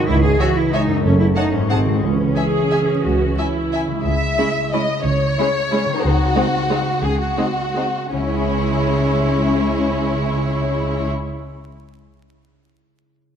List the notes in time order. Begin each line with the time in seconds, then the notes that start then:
Already playing: C#3 D#3 C#4
0.00 E4 G#4
0.08 C#2 E4
0.23 G#4
0.39 E3 F#4 C#5 E5 G#5
0.57 E4
0.73 G#3 D#4 C#5 E5 G#5
0.87 F#2
0.91 C#4
0.96 F#4
1.00 A4
1.04 F#1 A3 C#4
1.19 E4
1.36 D#4 C#5 F#5 A5
1.52 G#2 C#4
1.57 G#3
1.61 F#4
1.66 G#3 A4
1.70 G#1 C4 G#4 F#5 A5
1.85 C#3
1.90 G#3
1.94 E4
1.98 E3 C#4 G#4
2.03 C#2
2.36 G#4 E5 G#5
2.71 E5 G#5
3.04 C#2 F#4
3.37 E4 E5 G#5
3.72 E5 G#5
3.87 C#3
3.91 G#3
3.96 E4
4.00 G#4
4.04 C#2 C#3 E5
4.38 G#3 C#4 E4
4.73 G#3 C#4 E4 D#5
5.05 C#2 C#3 C#5
5.38 G#3 C#4 E4
5.71 G#3 C#4 E4
5.85 C#3
5.90 C4
5.94 D#4
5.99 G#4
6.03 C#2 C#3 F#4
6.35 G#3 C4 D#4
6.70 G#3 C4 D#4
7.02 C#2 C#3 G#4
7.20 F#4
7.37 G#3 C4 D#4
7.75 G#3 C4 D#4
8.12 C#2 C#3 G#3 C#4 E4 C#5
8.20 C#4
8.27 E4
8.34 G#4
8.41 E5